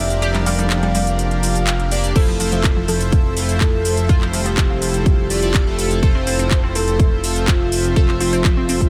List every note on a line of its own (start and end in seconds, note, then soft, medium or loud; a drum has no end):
0.00 2.13 F1 medium
0.00 0.19 F3 medium
0.00 2.12 F3 medium
0.00 0.19 A#3 medium
0.00 0.19 D4 medium
0.00 2.12 D4 medium
0.00 0.19 G4 medium
0.00 2.12 G4 medium
0.00 2.12 A#4 medium
0.00 0.19 D5 medium
0.00 0.37 E5 loud
0.10 closed hi-hat medium
0.10 cabasa soft
0.22 1.64 F3 medium
0.22 1.64 A#3 medium
0.22 1.64 D4 medium
0.22 0.31 G4 loud
0.22 1.64 G4 medium
0.22 1.64 D5 medium
0.22 closed hi-hat medium
0.22 cabasa soft
0.34 0.43 G3 medium
0.34 clap soft
0.34 closed hi-hat soft
0.46 0.55 G3 medium
0.46 2.06 F5 loud
0.46 open hi-hat loud
0.46 cabasa medium
0.59 0.67 G3 medium
0.59 closed hi-hat medium
0.59 cabasa soft
0.70 clap loud
0.70 closed hi-hat medium
0.70 cabasa soft
0.83 0.91 G3 medium
0.83 closed hi-hat soft
0.95 1.03 G3 medium
0.95 open hi-hat loud
0.95 cabasa medium
1.07 closed hi-hat medium
1.07 cabasa soft
1.19 closed hi-hat medium
1.19 cabasa soft
1.31 closed hi-hat soft
1.43 open hi-hat loud
1.43 cabasa medium
1.55 closed hi-hat medium
1.55 cabasa soft
1.67 clap loud
1.67 closed hi-hat medium
1.67 cabasa soft
1.80 closed hi-hat soft
1.91 2.13 A#3 loud
1.91 2.13 D4 medium
1.91 2.13 G4 medium
1.91 2.13 D5 loud
1.91 open hi-hat loud
1.91 cabasa medium
2.04 closed hi-hat medium
2.04 cabasa soft
2.16 8.89 F1 medium
2.16 8.89 F3 medium
2.16 3.34 A3 medium
2.16 8.89 C4 medium
2.16 3.34 E4 medium
2.16 2.24 E4 loud
2.16 3.34 F4 medium
2.16 2.79 A4 loud
2.16 8.89 A4 medium
2.16 3.34 C5 loud
2.16 5.99 E5 medium
2.16 kick loud
2.16 closed hi-hat medium
2.16 crash loud
2.16 cabasa soft
2.28 2.36 F3 medium
2.40 2.48 F3 medium
2.40 open hi-hat loud
2.40 cabasa medium
2.52 2.60 F3 medium
2.52 closed hi-hat medium
2.52 cabasa soft
2.64 kick loud
2.64 clap loud
2.64 closed hi-hat medium
2.64 cabasa soft
2.76 2.85 F3 medium
2.88 2.97 F3 medium
2.88 3.51 A4 loud
2.88 3.51 A4 medium
2.88 open hi-hat loud
2.88 cabasa medium
3.01 closed hi-hat medium
3.01 cabasa soft
3.12 kick loud
3.12 closed hi-hat medium
3.12 cabasa soft
3.37 4.06 A3 medium
3.37 4.06 E4 medium
3.37 4.06 F4 medium
3.37 4.06 C5 medium
3.37 open hi-hat loud
3.37 cabasa medium
3.49 closed hi-hat medium
3.49 cabasa soft
3.61 4.24 A4 loud
3.61 4.24 A4 medium
3.61 kick loud
3.61 clap loud
3.61 closed hi-hat medium
3.61 cabasa soft
3.85 open hi-hat loud
3.85 cabasa medium
3.97 closed hi-hat medium
3.97 cabasa soft
4.09 5.28 A3 medium
4.09 5.28 E4 medium
4.09 4.18 F4 loud
4.09 5.28 F4 medium
4.09 5.28 C5 medium
4.09 kick loud
4.09 closed hi-hat medium
4.09 cabasa soft
4.21 4.30 F3 medium
4.21 clap soft
4.33 4.42 F3 medium
4.33 5.93 G4 loud
4.33 5.93 G4 medium
4.33 open hi-hat loud
4.33 cabasa medium
4.46 4.54 F3 medium
4.46 closed hi-hat medium
4.46 cabasa soft
4.57 kick loud
4.57 clap loud
4.57 closed hi-hat medium
4.57 cabasa soft
4.70 4.78 F3 medium
4.82 4.90 F3 medium
4.82 open hi-hat loud
4.82 cabasa medium
4.94 closed hi-hat medium
4.94 cabasa soft
5.06 kick loud
5.06 closed hi-hat medium
5.06 cabasa soft
5.30 5.40 A3 medium
5.30 5.40 E4 medium
5.30 5.40 F4 medium
5.30 5.40 D5 medium
5.30 open hi-hat loud
5.30 cabasa medium
5.42 5.64 A3 medium
5.42 5.64 E4 medium
5.42 5.64 F4 medium
5.42 5.64 D5 loud
5.42 closed hi-hat medium
5.42 cabasa soft
5.54 kick loud
5.54 clap loud
5.54 closed hi-hat medium
5.54 cabasa soft
5.67 6.00 A3 loud
5.67 6.00 E4 medium
5.67 6.00 F4 medium
5.67 6.00 A4 loud
5.79 open hi-hat loud
5.79 cabasa medium
5.91 closed hi-hat medium
5.91 cabasa soft
6.03 7.21 A3 medium
6.03 7.21 E4 medium
6.03 7.21 F4 medium
6.03 6.11 A4 loud
6.03 6.77 C5 loud
6.03 7.21 C5 loud
6.03 6.75 C5 loud
6.03 kick loud
6.03 closed hi-hat medium
6.03 cabasa soft
6.15 6.23 C4 medium
6.27 6.35 C4 medium
6.27 open hi-hat loud
6.27 cabasa medium
6.39 6.47 C4 medium
6.39 closed hi-hat medium
6.39 cabasa soft
6.51 kick loud
6.51 clap loud
6.51 closed hi-hat soft
6.51 cabasa soft
6.63 6.72 C4 medium
6.75 6.84 C4 medium
6.75 7.48 A4 loud
6.75 7.49 A4 loud
6.75 open hi-hat loud
6.75 cabasa medium
6.88 closed hi-hat medium
6.88 cabasa soft
7.00 kick loud
7.00 closed hi-hat medium
7.00 cabasa soft
7.24 7.93 A3 medium
7.24 7.93 F4 medium
7.24 7.93 C5 medium
7.24 7.93 E5 medium
7.24 open hi-hat loud
7.24 cabasa medium
7.36 closed hi-hat medium
7.36 cabasa soft
7.48 8.11 F4 loud
7.48 kick loud
7.48 clap loud
7.48 closed hi-hat medium
7.48 cabasa soft
7.72 open hi-hat loud
7.72 cabasa medium
7.84 closed hi-hat medium
7.84 cabasa soft
7.96 8.89 A3 medium
7.96 8.89 F4 medium
7.96 8.05 A4 loud
7.96 8.89 C5 medium
7.96 8.89 E5 medium
7.96 kick loud
7.96 closed hi-hat medium
7.96 cabasa soft
8.08 8.17 C4 medium
8.08 clap soft
8.20 8.29 C4 medium
8.20 8.89 F4 loud
8.20 8.89 F4 medium
8.20 open hi-hat loud
8.20 cabasa medium
8.33 8.41 C4 medium
8.33 closed hi-hat medium
8.33 cabasa soft
8.45 kick loud
8.45 clap loud
8.45 closed hi-hat soft
8.45 cabasa soft
8.57 8.65 C4 medium
8.69 8.77 C4 medium
8.69 open hi-hat loud
8.69 cabasa medium
8.81 kick medium
8.81 closed hi-hat medium
8.81 cabasa soft